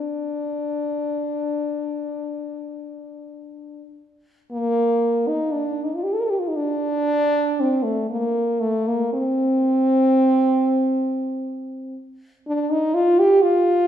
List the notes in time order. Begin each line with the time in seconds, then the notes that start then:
Already playing: D4
4.52 A#3
5.28 D#4
5.52 D4
5.84 D#4
5.95 F4
6.03 G4
6.13 A4
6.20 A#4
6.25 A4
6.30 G4
6.40 F4
6.48 D#4
6.56 D4
7.60 C4
7.83 A3
8.10 A#3
8.60 A3
8.88 A#3
9.13 C4
12.47 D4
12.70 D#4
12.94 F4
13.19 G4
13.42 F4